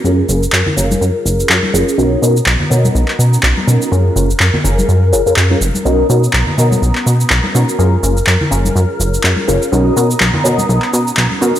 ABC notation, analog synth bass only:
X:1
M:4/4
L:1/16
Q:"Swing 16ths" 1/4=124
K:F#
V:1 name="Analog synth bass" clef=bass
F,, z F,,, z F,, z F,,, z F,, z F,,, z F,, z F,,, z | B,,, z B,, z B,,, z B,, z B,,, z B,, z B,,, z B,, z | F,, z F,,, z F,, z F,,, z F,,2 F,,, F,, F,, z F,,, z | B,,, z B,, z B,,, z B,, z B,,, z B,, z B,,, z B,, z |
F,, z F,,, z F,, z F,,, z F,, z F,,, z F,, z F,,, z | B,,, z B,, z B,,, z B,, z B,,, z B,, z B,,, z B,, z |]